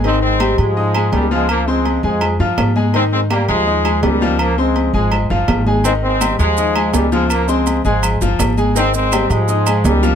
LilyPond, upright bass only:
\new Staff \with { instrumentName = "Upright bass" } { \clef bass \time 4/4 \key aes \major \tempo 4 = 165 aes,,4. aes,4. des,4~ | des,4. f,4 g,8 aes,4~ | aes,4. ees,4. des,4~ | des,4. aes,,4 g,,8 aes,,4~ |
aes,,4. ees,4. des,4~ | des,4. aes,,4 g,,8 aes,,4~ | aes,,4. aes,4. des,4 | }